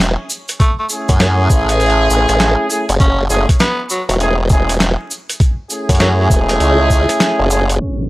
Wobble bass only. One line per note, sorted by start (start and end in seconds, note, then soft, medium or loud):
0.00 0.16 E1 loud
1.09 1.48 F#2 loud
1.50 2.08 A1 medium
2.10 2.26 A1 loud
2.29 2.56 A1 medium
2.89 2.98 F#1 loud
3.00 3.28 F#1 medium
3.30 3.46 F#1 loud
4.09 4.96 E1 medium
5.89 6.28 F#2 loud
6.30 6.58 E1 loud
6.60 7.06 C#2 medium
7.39 7.78 F#1 loud